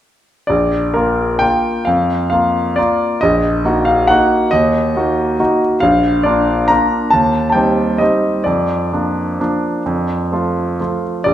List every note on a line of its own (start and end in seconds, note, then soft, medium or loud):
0.47 0.94 A#1 soft
0.47 0.94 D5 medium
0.94 1.38 A#3 soft
0.94 1.38 F4 soft
0.94 1.41 A#4 medium
1.39 1.83 A#3 soft
1.39 1.83 F4 soft
1.39 1.85 G5 medium
1.85 2.30 F2 medium
1.85 2.28 F5 medium
2.30 2.74 A#3 soft
2.30 2.74 F4 soft
2.30 2.77 F5 medium
2.76 3.18 A#3 soft
2.76 3.18 F4 soft
2.76 3.21 D5 medium
3.21 3.64 A#1 medium
3.21 3.86 D#5 medium
3.65 4.05 A#3 soft
3.65 4.05 D#4 soft
3.65 4.06 F#4 soft
3.85 4.08 F5 medium
4.08 4.49 A#3 soft
4.08 4.49 D#4 soft
4.08 4.50 F#4 soft
4.08 4.52 F#5 medium
4.51 4.94 D#2 medium
4.51 5.60 D#5 medium
4.96 5.36 A#3 soft
4.96 5.36 D#4 soft
4.96 5.36 F#4 soft
5.40 5.79 A#3 soft
5.40 5.79 D#4 soft
5.40 5.79 F#4 soft
5.80 6.24 A#1 medium
5.80 6.24 F5 medium
6.23 6.66 A#3 soft
6.23 6.66 D4 soft
6.23 6.66 F4 soft
6.23 6.69 D5 medium
6.68 7.09 A#3 soft
6.68 7.09 D4 soft
6.68 7.09 F4 soft
6.68 7.12 A#5 medium
7.10 7.54 D#2 medium
7.10 7.48 A5 medium
7.50 7.99 G5 medium
7.50 7.56 A5 soft
7.54 7.96 G3 soft
7.54 7.96 C4 soft
7.54 7.96 D#4 soft
7.98 8.42 G3 soft
7.98 8.42 C4 soft
7.98 8.42 D#4 soft
7.98 8.45 D#5 medium
8.44 8.90 F2 soft
8.44 11.02 D5 medium
8.92 9.35 F3 soft
8.92 9.36 A#3 soft
8.92 9.36 D4 soft
9.40 9.81 F3 soft
9.40 9.82 A#3 soft
9.40 9.82 D4 soft
9.86 10.30 F2 soft
10.32 10.76 F3 soft
10.32 10.76 A3 soft
10.32 10.76 F4 soft
10.80 11.22 F3 soft
10.80 11.22 A3 soft
10.80 11.23 F4 soft
11.24 11.34 A#1 soft
11.24 11.34 D5 medium